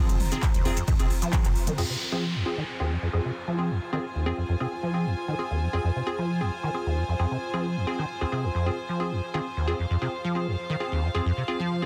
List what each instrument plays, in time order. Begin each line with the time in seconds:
Already playing: acid bass F3, synth drone F3 C4, synth stab C4 F4 G#4, string section F4 C5 A#5
0.09 sub bass F1, acid bass F2, closed hi-hat, mid tom, shaker
0.20 sub bass F1, mid tom, open hi-hat
0.32 acid bass D#3, synth stab C4 F4 G#4, closed hi-hat, shaker
0.43 kick, clap, closed hi-hat, ride, shaker
0.54 sub bass F1, acid bass D#2, closed hi-hat, mid tom, shaker
0.65 sub bass F1, acid bass F2, synth stab C4 F4 G#4, open hi-hat
0.77 acid bass F2, closed hi-hat, shaker
0.88 acid bass F2, kick, closed hi-hat, ride, shaker
0.99 sub bass F1, acid bass C3, synth stab C4 F4 G#4, closed hi-hat, shaker
1.10 sub bass F1, open hi-hat
1.22 acid bass F3, closed hi-hat, shaker
1.33 synth stab C4 F4 G#4, kick, clap, closed hi-hat, ride, shaker
1.45 sub bass F1, acid bass F2, clap, closed hi-hat, shaker
1.55 sub bass F1, open hi-hat
1.67 acid bass D#3, closed hi-hat, mid tom, shaker
1.78 acid bass F2, synth stab C4 F4 G#4, string section F4, crash, downlifter
1.90 acid bass C3
2.12 acid bass F3, synth stab C4 F4 G#4
2.35 acid bass F2
2.46 synth stab C4 F4 G#4
2.53 string section C5 G#5
2.57 acid bass D#3
2.80 acid bass D#2, synth stab C4 F4 G#4
2.91 acid bass F2
3.02 acid bass F2
3.13 acid bass F2, synth stab C4 F4 G#4
3.25 acid bass C3
3.48 acid bass F3
3.59 synth stab C4 F4 G#4
3.70 acid bass F2
3.93 acid bass D#3, synth stab C4 F4 G#4
4.15 acid bass D#2
4.26 acid bass F2, synth stab C4 F4 G#4
4.38 acid bass F2
4.49 acid bass F2
4.60 acid bass C3, synth stab C4 F4 G#4
4.83 acid bass F3
4.94 synth stab C4 F4 G#4
5.06 acid bass F2
5.28 acid bass D#3
5.39 synth stab C4 F4 G#4
5.51 acid bass D#2
5.62 acid bass F2
5.73 acid bass F2, synth stab C4 F4 G#4
5.84 acid bass F2
5.96 acid bass C3
6.07 synth stab C4 F4 G#4
6.18 acid bass F3
6.41 acid bass F2, synth stab C4 F4 G#4
6.63 acid bass D#3
6.74 synth stab C4 F4 G#4
6.86 acid bass D#2
6.97 acid bass F2
7.08 acid bass F2
7.19 acid bass F2, synth stab C4 F4 G#4
7.31 acid bass C3
7.54 acid bass F3, synth stab C4 F4 G#4
7.76 acid bass F2
7.87 synth stab C4 F4 G#4
7.99 acid bass D#3
8.21 acid bass D#2, synth stab C4 F4 G#4
8.32 acid bass C3, synth stab C4 F4 G#4
8.44 acid bass D#2
8.55 acid bass F2
8.66 acid bass G2, synth stab C4 F4 G#4
8.89 acid bass F3
9.00 synth stab C4 F4 G#4
9.12 acid bass F2
9.34 acid bass D#3, synth stab C4 F4 G#4
9.57 acid bass D#2
9.68 acid bass F2, synth stab C4 F4 G#4
9.77 acid bass F2, string section F5
9.90 acid bass F2
10.02 acid bass C3, synth stab C4 F4 G#4
10.24 acid bass F3
10.35 synth stab C4 F4 G#4
10.47 acid bass F2
10.69 acid bass D#3
10.80 synth stab C4 F4 G#4
10.92 acid bass D#2
11.03 acid bass F2
11.15 acid bass F2, synth stab C4 F4 G#4
11.25 acid bass F2
11.37 acid bass C3
11.48 synth stab C4 F4 G#4
11.60 acid bass F3
11.82 acid bass F2, synth stab C4 F4 G#4